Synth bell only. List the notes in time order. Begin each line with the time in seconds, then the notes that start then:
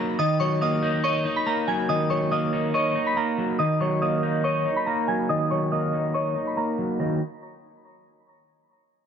0.19 D#5 D#6
0.40 C#5 C#6
0.62 D#5 D#6
1.04 C#5 C#6
1.36 B5 B6
1.47 A#5 A#6
1.68 G#5 G#6
1.89 D#5 D#6
2.10 C#5 C#6
2.32 D#5 D#6
2.74 C#5 C#6
3.07 B5 B6
3.17 A#5 A#6
3.59 D#5 D#6
3.81 C#5 C#6
4.02 D#5 D#6
4.44 C#5 C#6
4.76 B5 B6
4.86 A#5 A#6
5.08 G#5 G#6
5.29 D#5 D#6
5.51 C#5 C#6
5.72 D#5 D#6
6.14 C#5 C#6
6.47 B5 B6
6.57 A#5 A#6
7.00 A#6